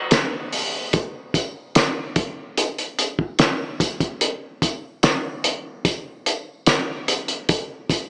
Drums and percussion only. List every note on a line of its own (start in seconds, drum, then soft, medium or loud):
0.11 snare loud
0.11 closed hi-hat medium
0.11 tambourine medium
0.53 open hi-hat medium
0.53 tambourine soft
0.93 kick loud
0.93 closed hi-hat medium
0.93 tambourine soft
1.34 kick medium
1.34 closed hi-hat medium
1.34 tambourine soft
1.75 snare loud
1.75 closed hi-hat loud
1.75 tambourine medium
2.16 kick loud
2.16 closed hi-hat medium
2.58 closed hi-hat medium
2.58 tambourine soft
2.78 closed hi-hat soft
2.99 closed hi-hat medium
2.99 tambourine medium
3.19 kick medium
3.39 snare loud
3.39 closed hi-hat medium
3.39 tambourine medium
3.80 kick loud
3.80 closed hi-hat medium
3.80 tambourine medium
4.00 kick medium
4.00 closed hi-hat medium
4.21 closed hi-hat medium
4.62 kick medium
4.62 closed hi-hat medium
4.62 tambourine soft
5.03 snare loud
5.03 closed hi-hat loud
5.03 tambourine medium
5.44 closed hi-hat medium
5.85 kick loud
5.85 closed hi-hat medium
5.85 tambourine medium
6.26 closed hi-hat medium
6.26 tambourine soft
6.66 snare loud
6.66 closed hi-hat medium
6.66 tambourine medium
7.08 closed hi-hat medium
7.08 tambourine soft
7.28 closed hi-hat medium
7.49 kick loud
7.49 closed hi-hat loud
7.49 tambourine soft
7.89 kick medium
7.89 closed hi-hat medium
7.89 tambourine soft